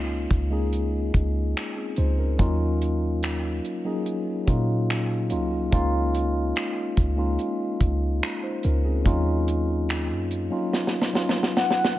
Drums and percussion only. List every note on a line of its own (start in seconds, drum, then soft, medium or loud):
0.31 kick loud
0.31 closed hi-hat medium
0.73 closed hi-hat medium
1.14 kick medium
1.14 closed hi-hat medium
1.57 finger snap loud
1.57 closed hi-hat medium
1.96 closed hi-hat medium
2.39 kick medium
2.39 closed hi-hat medium
2.82 closed hi-hat medium
3.23 finger snap loud
3.23 closed hi-hat medium
3.65 closed hi-hat medium
4.06 closed hi-hat medium
4.48 kick medium
4.48 closed hi-hat medium
4.90 finger snap medium
4.90 closed hi-hat medium
5.30 closed hi-hat medium
5.72 kick loud
5.72 closed hi-hat medium
6.15 closed hi-hat medium
6.56 finger snap loud
6.56 closed hi-hat medium
6.97 kick loud
6.97 closed hi-hat medium
7.39 closed hi-hat medium
7.81 kick medium
7.81 closed hi-hat medium
8.23 finger snap loud
8.23 closed hi-hat medium
8.63 closed hi-hat medium
9.06 kick loud
9.06 closed hi-hat medium
9.48 closed hi-hat medium
9.89 finger snap loud
9.89 closed hi-hat medium
10.31 closed hi-hat medium
10.73 snare medium
10.87 snare soft
11.02 snare medium
11.15 snare medium
11.29 snare medium
11.43 snare medium
11.57 snare medium
11.71 snare medium
11.84 snare medium